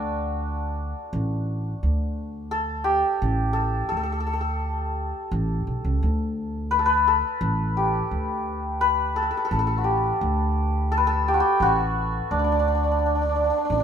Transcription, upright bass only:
Already playing: D2
1.13 A1
1.83 D2
3.22 A1
3.92 D2
5.32 A1
5.67 B1
5.85 C#2
6.03 D2
7.41 A1
8.11 D2
9.51 A1
10.21 D2
11.60 A1
12.31 D2
13.70 A1

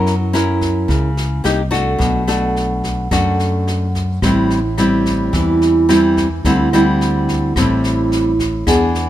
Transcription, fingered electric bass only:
Already playing: F#2
0.89 C#2
1.45 C2
2.00 B1
3.11 F#2
4.22 A1
5.33 E2
6.44 D2
7.55 A1
8.67 E2

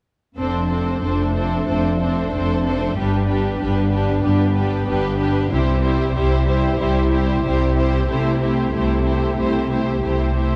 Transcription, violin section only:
0.39 A4 C5
0.69 A4 C5
1.01 A4 C5
1.34 A4 C5
1.66 A4 C5
2.00 A4 C5
2.33 A4 C5
2.65 A4 C5
2.96 G4 B4
3.28 G4 B4
3.60 G4 B4
3.91 G4 B4
4.23 G4 B4
4.55 G4 B4
4.87 G4 B4
5.19 G4 B4
5.51 G4 C5
5.83 G4 C5
6.15 G4 C5
6.47 G4 C5
6.79 G4 C5
7.12 G4 C5
7.45 G4 C5
7.77 G4 C5
8.09 G4 C5
8.42 G4 C5
8.74 G4 C5
9.07 G4 C5
9.39 G4 C5
9.71 G4 C5
10.02 G4 C5
10.36 G4 C5

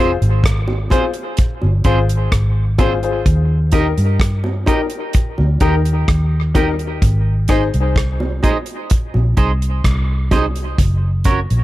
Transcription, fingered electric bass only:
Already playing: F1
0.22 G#1
1.63 G1
1.85 G#1
2.33 G#1
3.27 D#2
3.98 G2
5.39 D2
5.61 D#2
6.09 D#2
7.02 G#1
7.74 C2
9.15 A#1
9.38 C2
9.85 C2
10.79 F#1
11.51 A#1

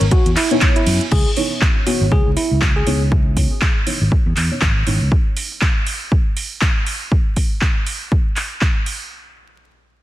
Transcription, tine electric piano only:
0.11 F#4
0.37 E4
0.76 E4
1.12 G#4
1.87 F#4
2.12 G#4
2.37 E4
2.76 G#4

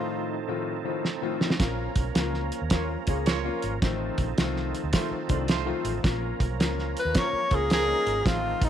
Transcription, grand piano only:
Already playing: A2 D#3 F3 A3 C4 D#4
0.48 A2 D#3 F3 A3 C4 F4
0.84 A2 D#3 F3 A3 C4 F4
1.22 A2 D#3 F3 A3 C4 F4
1.59 A#3 C#4 F4
2.14 A#3 C#4 F4
2.71 A#3 C#4 F4
3.07 A#3 C#4 G#4
3.44 A#3 C#4 F4
3.82 D#3 F3 A3 C4 F4
4.37 D#3 F3 A3 C4 F4
4.92 D#3 F3 A3 C4 F4
5.28 D#3 F3 A3 C4 D4
5.65 D#3 F3 A3 C4 F4
6.03 A#3 C#4 F4
6.59 A#3 C#4 F4
7.14 A#3 C#4 F4
7.50 A#3 C#4 F4
7.87 A#3 C#4 D#4
8.25 D#3 F3 A3 C4 F4

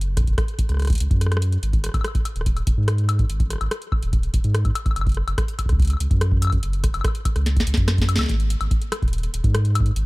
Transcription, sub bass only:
Already playing: F#1
0.27 F#1
0.69 C#2
1.00 C#2
1.11 F#2
1.63 G#1
1.94 G#1
2.36 D#1
2.67 D#1
2.78 G#2
3.30 G#1
3.61 G#1
4.03 D#1
4.34 D#1
4.44 G#2
4.96 F#1
5.27 F#1
5.69 C#2
6.00 C#2
6.11 F#2
6.63 F#1
6.94 F#1
7.36 C#2
7.67 C#2
7.77 F#2
8.19 C#2
8.29 G#1
8.61 G#1
9.02 D#1
9.34 D#1
9.44 G#2
9.96 G#1

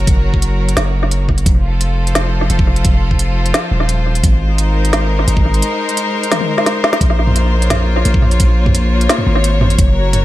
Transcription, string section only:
Already playing: F#3 F#4 A#4 C#5
1.46 F3
1.58 F4
1.65 A4
2.06 C5
4.23 G#3
4.47 D#4
4.70 A#4
7.01 A#3
7.23 F4
7.62 C#5
9.78 F#3
9.90 F#4 A#4

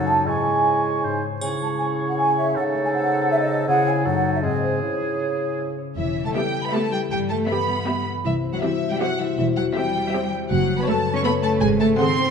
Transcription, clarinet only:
Already playing: D#4
0.27 E4
1.04 D#4
1.42 E4
2.56 D#4
3.69 E4
4.07 D#4
4.44 C4
4.83 E4

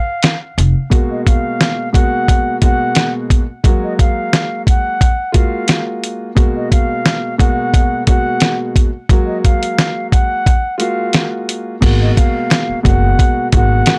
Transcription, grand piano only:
0.90 B2 G#3 A#3 F#4
1.93 B2 G#3 A#3 F#4
2.61 B2 G#3 A#3 F#4
3.64 F#3 G#3 A#3 F#4
5.32 G#3 A#3 F4 F#4
6.35 B2 G#3 A#3 F#4
7.38 B2 G#3 A#3 F#4
8.07 B2 G#3 A#3 F#4
9.09 F#3 G#3 A#3 F#4
10.78 G#3 A#3 F4 F#4
11.81 B2 G#3 A#3 F#4
12.83 B2 G#3 A#3 F#4
13.52 B2 G#3 A#3 F#4

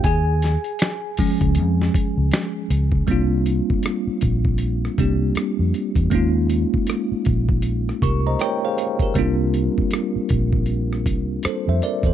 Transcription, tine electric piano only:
0.04 G#4 G#5
1.19 F3 G#3 C#4
3.07 G3 A#3 C4 D4
3.11 F4
4.98 G3 A#3 C4 D4 G4
6.10 G#3 A#3 C#4 D#4
6.15 F4
8.03 G4 A#4 C#6
8.27 C5 D#5 A#5
8.41 A#4 C#5 G5
8.65 G#4 C5 F5
9.02 G4 A#4
9.14 G3 A#3 C4 D4
9.19 F4
11.45 A4 C5
11.69 C5 E5
11.83 A#4 D5
12.06 A4 C5

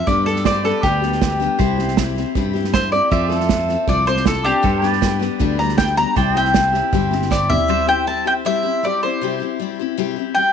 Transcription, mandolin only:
0.07 D5
0.26 A4
0.46 D5
0.65 A4
0.83 G4
2.74 C5
2.92 D5
3.12 E5
3.89 D5
4.07 C5
4.27 A4
4.44 D4 G4
5.59 A#5
5.78 G5
5.97 A#5
6.17 G5
6.37 G5
7.31 D5
7.50 E5
7.89 G5
8.07 A5
8.27 G5
8.46 E5
8.85 D5
9.03 C5
10.35 G5

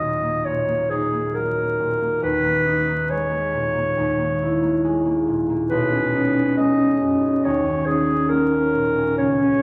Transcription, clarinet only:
Already playing: D#5
0.45 C#5
0.90 G#4
1.34 A#4
2.23 B4
3.10 C#5
5.69 B4
6.57 D#5
7.44 C#5
7.86 G#4
8.29 A#4
9.18 C#5

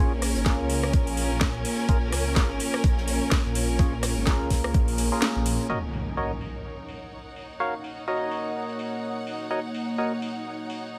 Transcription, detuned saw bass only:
0.00 A#1
0.36 G#1
0.60 C#2
0.94 A#1
1.31 A#1
1.89 A#1
2.13 C#2
2.36 G#1
2.84 A#1
3.45 A#1
3.79 A#1
4.17 G#1
4.41 C#2
4.74 A#1
5.36 A#1

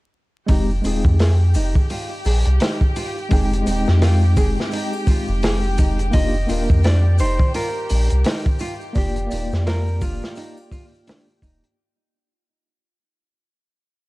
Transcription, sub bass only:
0.49 F1
0.84 D#1
1.05 F2
1.55 F1
2.25 A#1
2.46 C2
3.31 F1
3.66 D#1
3.88 F2
4.37 F1
5.28 F1
6.14 F1
6.49 D#1
6.70 F2
7.20 F1
7.91 A#1
8.12 C2
8.96 F1
9.32 D#1
9.52 F2
10.02 F1
11.42 D#1

